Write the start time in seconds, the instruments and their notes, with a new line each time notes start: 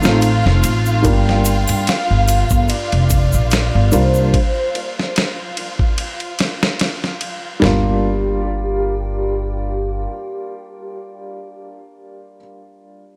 Already playing: violin section F4 F5
0.01 upright bass A1, felt piano A3 C4 D#4 F4, snare, shaker
0.21 ride, shaker
0.46 upright bass F1, snare
0.63 upright bass A1, ride, shaker
0.86 shaker
1.02 upright bass G1, felt piano G3 A#3 D4 F4, soft synth lead G5, kick, ride, shaker
1.29 snare
1.45 ride, shaker
1.68 upright bass G2, ride, triangle, shaker
1.87 soft synth lead F5, snare, ride, shaker
2.11 upright bass G1
2.28 ride, triangle, shaker
2.50 upright bass G1, kick, shaker
2.68 soft synth lead D5, ride, shaker
2.92 upright bass F1, ride
3.10 kick, ride, shaker
3.32 upright bass A#1, shaker
3.51 snare, ride, shaker
3.75 upright bass G1
3.92 upright bass C2, felt piano G3 A#3 D4 F4, soft synth lead C5, ride, shaker
4.14 shaker
4.34 kick, ride
4.75 ride
4.99 snare
5.16 snare, ride
5.57 ride
5.79 kick
5.98 ride
6.20 ride
6.39 snare, ride
6.63 snare
6.79 snare, ride
7.04 snare
7.21 ride
7.60 upright bass G1, felt piano G3 A#3 D4, soft synth lead G4, floor tom
7.64 felt piano F4, snare